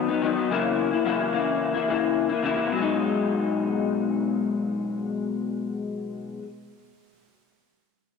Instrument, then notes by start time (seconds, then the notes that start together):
clean electric guitar
0.08 F#3 B3 D#4
0.22 D#3 F#3 B3 D#4
0.36 F#3 B3 D#4
0.50 F#2 C#3 E3 A#3 E4
0.91 E3 A#3 E4
1.05 F#2 C#3 E3 A#3 E4
1.32 C#3 E3 A#3 E4
1.74 E3 A#3 E4
1.88 C#3 E3 A#3 E4
2.29 E3 A#3 E4
2.43 C#3 E3 A#3 E4
2.55 E3 A#3 E4
2.66 B2
2.72 F#3
2.77 G#3
2.82 D#4